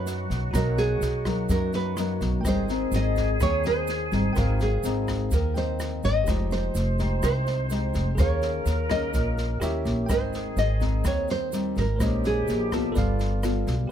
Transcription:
Already playing: F#2 F#3 D#4 F#4 B4 C#5 D#5 A#5
0.06 snare, shaker
0.30 B1, kick, snare, shaker
0.51 B1 B2 F#3 A#3 D#4 F#4 A#5, kick, cross-stick, snare, shaker
0.55 A#4 C#5 D#5
0.78 G#4, snare, shaker
1.01 B1, snare, shaker
1.25 F#3 A#3 D#4, kick, cross-stick, snare, shaker
1.49 F#2 A#4, kick, snare, shaker
1.73 B4, snare, shaker
1.97 F#3 A#3 D#4, cross-stick, snare, shaker
2.21 B1, kick, snare, shaker
2.41 G#1 G#2 C4 A#4 G5, cross-stick, snare
2.45 G3 D#4 G#4 C5 D#5, kick, shaker
2.69 C4 D#4, snare, shaker
2.92 G#1, snare, shaker
2.96 D#5
3.16 kick, snare, shaker
3.40 D#2 D#3 C4 D#4 C#5, kick, cross-stick, snare, shaker
3.64 C5, snare, shaker
3.87 snare, shaker
4.12 G#1 G3 C4 D#4, kick, snare, shaker
4.33 G#1 G#2 C4 D#4 A#4 G5, kick, cross-stick, snare, shaker
4.37 A#4 C5 F5
4.60 G#4, snare, shaker
4.83 G#1 C4 D#4, snare, shaker
5.08 kick, cross-stick, snare, shaker
5.31 D#2 D#3 A#4, kick, snare, shaker
5.54 C4 D#4 A#4 C5 D#5 G5, snare, shaker
5.79 cross-stick, snare, shaker
6.03 G#1 D#5, kick, snare, shaker
6.24 F1 F3 G#3 D#4 G4 C5, kick, cross-stick, snare, shaker
6.28 C5 D#5
6.51 C5, snare, shaker
6.75 F1, snare, shaker
6.99 G#3 D#4 G4, kick, snare, shaker
7.22 C2 C3 C5, kick, cross-stick, snare, shaker
7.46 snare, shaker
7.70 G#3 D#4 G4, snare, shaker
7.94 F1, kick, snare, shaker
8.15 D#2 D#3 G#4 A#4, kick, cross-stick, snare, shaker
8.19 A#3 C#4 G#4 C#5 F5
8.42 snare, shaker
8.65 D#2, snare, shaker
8.90 A#3 C#4 G#4 D#5, kick, cross-stick, snare, shaker
9.13 A#1 A#2, kick, snare, shaker
9.38 snare, shaker
9.60 D#2 C#4 E4 G4 A#4 C#5 E5, cross-stick, snare, shaker
9.85 A#1, kick, snare, shaker
10.06 G#1 G#2 C4 D#4 G#4 A#4 C5 G5, kick, cross-stick, snare, shaker
10.11 C5 D#5
10.33 snare, shaker
10.56 G#1 D#5, snare, shaker
10.80 C4 D#4, kick, snare, shaker
11.04 D#2 D#3 C#5, kick, cross-stick, snare, shaker
11.28 C5, snare, shaker
11.52 G3 C4 D#4, snare, shaker
11.76 G#1 A#4, kick, snare, shaker
11.96 A#1 A#2 G4 A#4 C5, shaker
12.00 G#3 C#4 D#4 C#5 D#5, kick, cross-stick, snare
12.24 G#4, snare, shaker
12.48 A#1, snare, shaker
12.72 B3 F4 A4, kick, cross-stick, snare, shaker
12.92 G1 G3 F4 A4 B4 D5, kick, snare, shaker
12.98 F5
13.19 snare, shaker
13.43 B3 F4 A4, cross-stick, snare, shaker
13.67 B1, kick, snare, shaker
13.87 G4

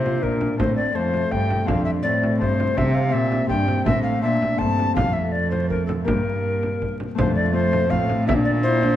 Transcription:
Already playing: A#2 C3 F3 D4 F4 A#4 C5
0.04 F4, frame drum
0.21 A#2 D4 F4 A#4, frame drum
0.41 frame drum
0.56 A2 C4 A4 C5, frame drum
0.60 A2
0.76 D5
0.94 F2 A3 C4 A4 C5
1.12 A3, frame drum
1.31 G2 G5, frame drum
1.50 frame drum
1.65 F2 C4 D4 A4 C5 F5, frame drum
1.85 E5
2.03 A2 C4 D5
2.23 frame drum
2.37 G2 C4 A4 C5
2.41 G2, frame drum
2.60 frame drum
2.73 C3 C4 G4 C5 E5
2.78 C4, frame drum
2.94 F5
3.10 A#2 C4 G4 C5 E5
3.32 frame drum
3.47 G2 C4 D4 G4 C5 G5, frame drum
3.68 C4, frame drum
3.83 A2 A3 C4 A4 C5 E5, frame drum
4.03 F5
4.21 A#2 C4 D4 A4 C5 E5
4.42 frame drum
4.56 G2 C4 A4 C5 A5, frame drum
4.61 G2 C4
4.79 frame drum
4.93 F2 A3 C4 A4 F5, frame drum
5.13 E5
5.32 D5
5.51 C5, frame drum
5.70 A#4, frame drum
5.86 A4, frame drum
6.04 G2 A#3 G4 A#4
6.08 A#3, frame drum
6.63 frame drum
6.82 frame drum
7.00 frame drum
7.15 F2 A3 C4 F4 C5, frame drum
7.35 D5
7.51 A3 C4 F4 C5
7.73 frame drum
7.89 A2 A3 C4 F4 F5, frame drum
8.08 C4, frame drum
8.24 A#2 D4 F4 E5
8.29 frame drum
8.45 D5
8.63 E4 C5
8.83 D4, frame drum

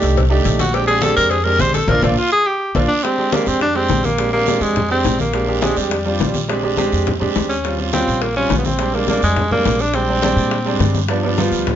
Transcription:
Already playing: A3 D4 D#4 G4
0.02 C2, cowbell, short guiro
0.16 cowbell, high conga, low conga, long guiro
0.30 A3 D4 D#4 G4, high conga
0.44 A#1, cowbell, high conga, short guiro
0.59 F#4, cowbell, high conga, short guiro
0.73 G#3 C4 D4 G4, cowbell, high conga, long guiro
0.87 G#3 C4 D4 G4 G#4, cowbell, high conga
1.02 G#3 C4 D4 G4 A4, cowbell, high conga, short guiro
1.16 F2 A#4, cowbell, high conga, short guiro
1.30 G#4, cowbell, high conga, long guiro
1.44 G#3 C4 D4 G4 A#4, high conga
1.59 A#1 C5, cowbell, high conga, short guiro
1.73 A4, cowbell, high conga, short guiro
1.88 A#1 A#3 D4 F4 A#4, cowbell, high conga, long guiro
2.02 A#1 A#3 D4 F4, cowbell, high conga, long guiro
2.18 F4
2.32 G#4
2.46 G4
2.75 A#1 A#3 D4 F4, cowbell, high conga, long guiro
2.88 D4
3.03 G#3 C4 D4 G4, high bongo, high conga, long guiro
3.18 G#3 C4 D4 G4, high conga
3.32 G#3 A#3 C4 D4 G4, high bongo, high conga, short guiro
3.46 F2 C4, high bongo, high conga, short guiro
3.61 D4, high bongo, high conga
3.75 G#3 C4 D4 G4, high bongo, high conga
3.88 A#1, high bongo, low bongo, high conga, short guiro
4.03 A#3, high bongo, high conga, short guiro
4.18 G#3 C4 D4 G4, high bongo, high conga, long guiro
4.33 G#3 A#3 C4 D4 G4, high conga
4.46 G#3 C4 D4 G4, high bongo, high conga, short guiro
4.60 F2 G#3, high bongo, high conga, short guiro
4.76 high bongo, high conga, low conga, long guiro
4.90 G#3 C4 D4 G4, high bongo, high conga
5.04 A#1, high bongo, low bongo, high conga, short guiro
5.19 A#3, high bongo, high conga, short guiro
5.33 G#3 C4 D4 G4, high bongo, high conga, long guiro
5.47 G#3 C4 D4 G4, high conga
5.61 G#3 C4 D4 G4, high bongo, high conga, short guiro
5.76 F2 G3, high bongo, high conga, short guiro
5.90 high bongo, high conga, long guiro
6.05 G3 C4 D4 F4, high bongo, high conga
6.19 A#1, high bongo, low bongo, high conga, short guiro
6.34 high bongo, high conga, short guiro
6.48 G#3 C4 D4 G4, high bongo, high conga, long guiro
6.63 G#3 C4 D4 G4, high conga
6.77 G#3 C4 D4 G4, high bongo, high conga, short guiro
6.92 F2, high bongo, high conga, short guiro
7.07 high bongo, high conga, low conga, long guiro
7.20 G#3 C4 D4 G4, high bongo, high conga, low conga
7.36 D#2, high bongo, low bongo, high conga, short guiro
7.49 C#4, high bongo, short guiro
7.64 G3 C4 C#4 F4, high bongo, high conga, long guiro
7.78 G3 C4 C#4 F4, high conga
7.93 G3 C4 C#4 F4, high bongo, high conga, short guiro
8.08 A#1, high bongo, high conga, short guiro
8.22 A#3, high bongo, high conga, long guiro
8.36 G3 C4 C#4 F4, high bongo, high conga
8.50 A#1, high bongo, low bongo, high conga, short guiro
8.58 B3
8.64 C4, high bongo, high conga, short guiro
8.79 G3 G#3 C4 D4, high bongo, high conga, long guiro
8.94 G3 G#3 A#3 C4 D4, high conga
9.08 G3 G#3 A#3 C4 D4, high bongo, high conga, short guiro
9.22 F2 G#3, high bongo, high conga, short guiro
9.36 high bongo, high conga, low conga, long guiro
9.51 G3 G#3 A#3 C4 D4, high bongo, high conga, low conga
9.65 A#1, high bongo, low bongo, high conga, short guiro
9.79 D4, high bongo, short guiro
9.93 G3 G#3 C4 D4, high bongo, high conga, long guiro
10.09 G3 G#3 C4 D4, high conga
10.22 G3 G#3 C4 D4, high bongo, high conga, short guiro
10.36 A#2, high bongo, high conga, short guiro
10.51 high bongo, high conga, long guiro
10.65 G3 G#3 C4 D4, high bongo, high conga
10.80 G2, high bongo, low bongo, high conga, short guiro
10.94 high bongo, high conga, short guiro
11.08 F3 G3 B3 D4, high bongo, high conga, long guiro
11.23 F3 G3 B3 D4, high conga
11.38 F3 G3 B3 F4, high bongo, high conga, short guiro
11.51 D2, high bongo, high conga, short guiro
11.66 high bongo, high conga, low conga, long guiro

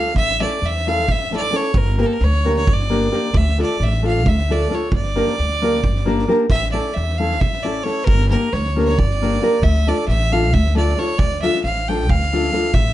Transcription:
Already playing: A3 D4 F4 A4 F5
0.07 snare
0.15 A1 E5, kick
0.29 snare
0.40 A3 C#4 E4 A4 D5, snare
0.62 E2 E5, snare
0.76 snare
0.87 A3 C#4 E4 A4 F5, snare
0.99 snare
1.08 A1 E5, kick
1.20 snare
1.31 A3 C#4 E4 A4, snare
1.36 D5
1.42 snare
1.52 A3 C#4 E4 A4 C#5, snare
1.74 G1 A#4, kick
1.85 snare
1.98 A#3 D4 G4 A#4, snare
2.06 A4
2.13 A#4
2.20 D2 C#5, snare
2.33 snare
2.44 A#3 D4 G4 A#4, snare
2.56 C#5, snare
2.67 G1, kick
2.72 D5
2.79 snare
2.90 A#3 D4 G4 A#4, snare
3.01 snare
3.12 A#3 D4 G4 A#4, snare
3.33 D2 E5, kick
3.48 snare
3.58 A3 D4 F4 A4 D5, snare
3.80 A1 E5, snare
3.93 snare
4.03 A3 D4 F4 A4, snare
4.07 F5
4.16 snare
4.26 D2 E5, kick
4.37 snare
4.50 A3 D4 F4 A4 D5, snare
4.60 snare
4.70 A3 D4 F4 A4, snare
4.75 C#5
4.92 G1 D5, kick
5.04 snare
5.16 A#3 D4 G4 A#4, snare
5.27 snare
5.38 D2, snare
5.49 snare
5.62 A#3 D4 G4 A#4, snare
5.74 snare
5.84 G1, kick
5.96 snare
6.05 A#3 D4 G4 A#4, snare
6.19 snare
6.28 A#3 D4 G4 A#4, snare
6.50 A1 E5, kick
6.63 snare
6.72 A3 C#4 E4 A4 D5, snare
6.94 E2 E5, snare
7.09 snare
7.17 A3 C#4 E4 F5
7.22 A4
7.31 snare
7.40 A1 E5, kick
7.53 snare
7.63 A3 C#4 E4 A4 D5
7.83 A3 C#4 E4 A4 C#5, snare
8.04 G1 A#4, kick
8.20 snare
8.29 A#3 D4 G4 A#4, snare
8.53 D2 C#5, snare
8.65 snare
8.76 A#3 D4 G4 A#4, snare
8.85 C#5, snare
8.98 G1 D5, kick
9.11 snare
9.22 A#3 D4 G4 A#4, snare
9.32 snare
9.41 A#3 D4 G4 A#4, snare
9.62 D2 E5, kick
9.75 snare
9.87 A3 D4 F4 A4 D5, snare
10.08 A1 E5, snare
10.21 snare
10.32 A3 D4 F4 A4 F5, snare
10.43 snare
10.53 D2 E5, kick
10.66 snare
10.75 A3 D4 F4 A4 D5, snare
10.88 snare
10.97 A3 D4 F4 A4 C#5, snare
11.18 D2 D5, kick
11.31 snare
11.42 A3 D4 F4 A4 E5, snare
11.54 snare
11.64 A1 F5, snare
11.76 snare
11.88 A3 D4 F4 A4 G5, snare
12.00 snare
12.09 D2 F5, kick
12.21 snare
12.33 A3 D4 F4 A4, snare
12.43 snare
12.53 A3 D4 F4 A4, snare
12.64 snare
12.74 A1 E5, kick
12.87 snare

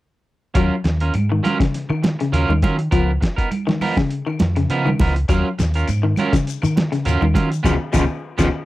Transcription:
0.54 D#2 F#3 C#4 F4 A#4, kick, closed hi-hat, claves
0.84 D#2, muted clean electric guitar stroke, snare, closed hi-hat
1.00 C#4 F4 A#4, closed hi-hat
1.14 G#2, muted clean electric guitar stroke, closed hi-hat, high conga, claves
1.29 D#3, muted clean electric guitar stroke
1.43 F#3 C#4 F4 A#4, snare, closed hi-hat, high conga, claves
1.59 C#3, muted clean electric guitar stroke, kick, snare, closed hi-hat
1.74 snare, closed hi-hat
1.89 D#3, muted clean electric guitar stroke, claves
2.03 muted clean electric guitar stroke, snare, closed hi-hat, high conga
2.19 C#3, muted clean electric guitar stroke, snare, closed hi-hat
2.32 D#2 F#3 C#4 F4 A#4, closed hi-hat
2.48 D#2 D#3, high conga, claves
2.62 D#3 F#3 C#4 F4 A#4, kick, closed hi-hat, high conga
2.78 muted clean electric guitar stroke, closed hi-hat
2.91 C#2 F3 B3 A#4, muted clean electric guitar stroke, kick, closed hi-hat, claves
3.21 muted clean electric guitar stroke, kick, snare, closed hi-hat
3.36 B3 D#4 A#4, kick, closed hi-hat
3.51 muted clean electric guitar stroke, closed hi-hat, high conga, claves
3.67 D#3, muted clean electric guitar stroke, snare, high conga
3.81 F3 B3 D#4 A#4, open hi-hat, high conga, claves
3.97 C#3, muted clean electric guitar stroke, kick, snare
4.11 closed hi-hat
4.26 D#3, muted clean electric guitar stroke, claves
4.39 F2, muted clean electric guitar stroke, snare, closed hi-hat, high conga
4.56 C#3, muted clean electric guitar stroke, snare, closed hi-hat
4.70 C#3 F3 B3 D#4 A#4, closed hi-hat
4.85 D#3, high conga, claves
5.00 C#2 F3 B3 D#4 A#4, kick, snare, open hi-hat, high conga
5.15 muted clean electric guitar stroke, closed hi-hat
5.29 D#2 F#3 C#4 F4 A#4, kick, closed hi-hat, claves, shekere
5.58 D#2, muted clean electric guitar stroke, snare, closed hi-hat, shekere
5.74 C#4 F4 A#4, closed hi-hat, shekere
5.87 G#2, muted clean electric guitar stroke, closed hi-hat, claves, shekere
6.03 D#3, muted clean electric guitar stroke
6.16 F#3 C#4 F4 A#4, closed hi-hat, high conga, claves, shekere
6.33 C#3, muted clean electric guitar stroke, kick, snare, closed hi-hat, shekere
6.47 closed hi-hat, shekere
6.62 D#3, muted clean electric guitar stroke, claves, shekere
6.76 muted clean electric guitar stroke, snare, closed hi-hat, high conga
6.92 C#3, muted clean electric guitar stroke, snare, closed hi-hat, shekere
7.05 D#2 F#3 C#4 F4 A#4, closed hi-hat, shekere
7.21 D#2 D#3, high conga, claves
7.34 D#3 F#3 C#4 F4 A#4, kick, closed hi-hat, high conga, shekere
7.50 muted clean electric guitar stroke, closed hi-hat, shekere
7.63 C#2 B2 C#3 F3 B3 C#4 F4, kick, snare, low conga, claves, shekere
7.93 C#2 B2 C#3 F3 B3 C#4 F4, kick, snare, low conga, claves, shekere
8.38 C#2 B2 C#3 F3 B3 C#4 F4, kick, snare, low conga, claves, shekere

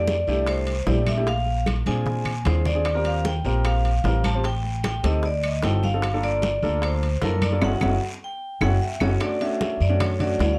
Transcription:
Already playing: F2 A3 D4 E4 G4 D5
0.07 high bongo, high conga, low timbale, short guiro
0.27 C2 A3 D4 E4 G4, high conga, short guiro
0.47 C5, high bongo, high conga, high timbale, long guiro, claves
0.67 high conga, high timbale
0.86 A#1 A3 D4 E4 G4 D5, high bongo, low bongo, high conga, low timbale, short guiro
1.07 E5, high conga, high timbale, short guiro, claves
1.17 A3 D4 E4 G4
1.27 F5, high bongo, high conga, high timbale, long guiro
1.46 high bongo, high conga
1.66 high bongo, high conga, high timbale, low timbale, short guiro, claves
1.86 A#2 C4 D4 F4 G#4 G#5, high bongo, high conga, high timbale, short guiro
2.06 high bongo, low conga, long guiro
2.25 low conga, high timbale, claves
2.45 D#2 C4 D4 F4 G#4 C5, high bongo, low bongo, low conga, high timbale, low timbale, short guiro
2.65 D5, high bongo, low conga, short guiro
2.74 C4 D4 F4 G#4
2.85 high bongo, high conga, high timbale, long guiro, claves
2.94 C4 F4 G4 A#4
3.05 F5, high conga, high timbale
3.24 G5, high bongo, high conga, low timbale, short guiro
3.44 A#1 C4 F4 G4 A#4, high conga, short guiro
3.65 F5, high bongo, high conga, high timbale, long guiro, claves
3.84 high conga, high timbale
4.04 A1 C4 F4 G4 A#4, high bongo, low bongo, high conga, low timbale, short guiro
4.24 A5, high conga, high timbale, short guiro, claves
4.34 C4 F4 G4 C5
4.44 G5, high bongo, high conga, high timbale, long guiro
4.64 high bongo, high conga
4.83 G5, high bongo, high conga, high timbale, low timbale, short guiro, claves
5.03 D2 C4 D#4 G4 A4 D#5, high bongo, high conga, high timbale, short guiro
5.23 D5, high bongo, high conga, long guiro
5.44 D#5, high conga, high timbale, claves
5.63 G1 C4 D#4 F#4 A4 G5, high bongo, low bongo, high conga, high timbale, low timbale, short guiro
5.83 F5, high bongo, high conga, short guiro
5.93 C4 D#4 F#4 A4
6.02 high bongo, high conga, high timbale, long guiro, claves
6.14 A#3 D4 F4 A4
6.23 D5, high conga, high timbale
6.42 high bongo, high conga, low timbale, short guiro
6.62 D2 A#3 D4 F4 A4, high conga, short guiro
6.82 C5, high bongo, high conga, high timbale, long guiro, claves
7.02 high conga, high timbale
7.22 F#2 A#3 D4 F4 A4 A#4, high bongo, low bongo, high conga, low timbale, short guiro
7.42 D5, high conga, high timbale, short guiro, claves
7.51 A#3 D4 F4 A4
7.61 F#1 C#4 E4 F#4 F#5, high bongo, high conga, high timbale, long guiro, claves
7.81 F#1 C#4 E4 F#4, high bongo, high conga, high timbale, long guiro, claves
8.24 G5
8.61 F#1 C#4 E4 F#4 F#5, high bongo, high conga, high timbale, long guiro, claves
8.82 E5
9.00 F#1 C#4 E4 F#4 C#5, high bongo, high conga, high timbale, long guiro, claves
9.20 A3 C#4 D4 F#4 D5, high bongo, high timbale, long guiro, claves
9.40 A3 C#4 D4 F#4 E5, high conga, high timbale
9.61 high bongo, high conga, low timbale, short guiro
9.80 F#2 D5, high conga, short guiro
9.89 A3 C#4 D4 F#4
10.00 C#5, high bongo, high conga, low conga, high timbale, long guiro, claves
10.19 A3 C#4 D4 F#4 D5, high conga, low conga, high timbale
10.39 D2 D5, high bongo, low bongo, high conga, low timbale, short guiro
10.53 F5

